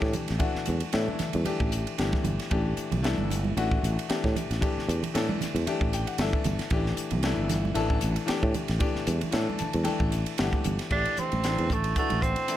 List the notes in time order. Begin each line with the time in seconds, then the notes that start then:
Already playing: E3 A3 D4 G4
0.02 A2, kick, snare
0.13 muted fretless electric bass stroke, hi-hat pedal, ride, low conga
0.28 A1, snare, ride
0.39 E3 A3 D4 F#4, kick, ride
0.55 muted fretless electric bass stroke, snare
0.66 E2, hi-hat pedal, ride, high conga
0.80 ride
0.93 A2 E3 A3 D4 E4, snare, ride
1.08 high conga
1.19 muted fretless electric bass stroke, snare, hi-hat pedal, ride, low conga
1.33 E2, ride, high conga
1.45 E3 A3 D4 G4, muted fretless electric bass stroke, ride, high conga
1.60 A1, kick
1.72 hi-hat pedal, ride
1.87 ride
1.98 G1 E3 A3 D4 G4, snare, ride
2.13 kick, snare, high conga
2.24 G1, hi-hat pedal, ride, low conga
2.40 snare, ride
2.50 A1 E3 A3 D4 G4, kick, ride
2.77 muted fretless electric bass stroke, hi-hat pedal, ride
2.92 C2, ride, low conga
3.02 E3 A3 D4 E4, snare, ride
3.18 G1, high conga
3.30 hi-hat pedal, ride, low conga
3.45 high conga
3.57 A1 E3 A3 D4 F#4, ride
3.72 kick
3.83 A1, hi-hat pedal, ride
3.99 ride
4.09 E3 A3 D4 G4, muted fretless electric bass stroke, snare, ride
4.24 A2, kick, snare
4.36 muted fretless electric bass stroke, hi-hat pedal, ride, low conga
4.51 A1, snare, ride
4.61 E3 A3 D4 G4, kick, ride
4.78 muted fretless electric bass stroke, snare
4.88 E2, hi-hat pedal, ride
5.03 ride, low conga
5.14 A2 E3 A3 D4 A4, snare, ride
5.29 high conga
5.41 muted fretless electric bass stroke, snare, hi-hat pedal, ride, low conga
5.55 E2, ride, high conga
5.66 E3 A3 D4 G4, muted fretless electric bass stroke, ride
5.81 A1, kick
5.93 G5, hi-hat pedal, ride
6.07 F#5, ride
6.18 G1 E3 A3 D4 A4 E5, snare, ride
6.33 kick
6.44 G1, hi-hat pedal, ride, low conga
6.59 snare, ride
6.70 A1 E3 A3 D4 G4, kick, ride
6.86 snare
6.97 hi-hat pedal, ride
7.11 C2, ride, low conga
7.23 E3 A3 D4 E4, snare, ride
7.37 G1
7.49 snare, hi-hat pedal, ride, low conga
7.65 high conga
7.74 A1 E3 A3 D4 A4, ride
7.90 kick
8.01 A1, hi-hat pedal, ride
8.16 ride
8.26 E3 A3 D4 G4, muted fretless electric bass stroke, snare, ride
8.43 A2, kick
8.54 muted fretless electric bass stroke, hi-hat pedal, ride, low conga
8.68 A1, snare, ride
8.79 E3 A3 D4 G4, kick, ride
8.96 muted fretless electric bass stroke, snare
9.07 E2, hi-hat pedal, ride, high conga
9.21 ride, low conga
9.31 A2 E3 A3 D4 A4, snare, ride
9.50 high conga
9.59 A5, muted fretless electric bass stroke, hi-hat pedal, ride, low conga
9.73 E2, ride, high conga
9.83 E3 A3 D4 A4 G5, muted fretless electric bass stroke, ride
9.88 high conga
10.00 A1, kick
10.12 hi-hat pedal, ride
10.26 ride
10.38 G1 E3 A3 D4 G4 F#5, snare, ride
10.53 kick, high conga
10.64 G1, hi-hat pedal, ride, low conga
10.79 snare, ride
10.90 A1 E3 A3 D4 G4, kick, crash
11.05 ride
11.17 C4, muted fretless electric bass stroke, hi-hat pedal, low conga
11.32 A1, ride, high conga
11.44 E3 A3 D4 A4, snare, hi-hat pedal, ride
11.58 E2, ride, high conga
11.70 A1 A3, kick, hi-hat pedal, low conga
11.84 ride
11.96 E3 A3 D4 F#4, kick, hi-hat pedal, ride
12.10 A1, ride, high conga
12.22 C4, kick, hi-hat pedal
12.36 ride
12.48 E3 A3 D4 E4, hi-hat pedal, ride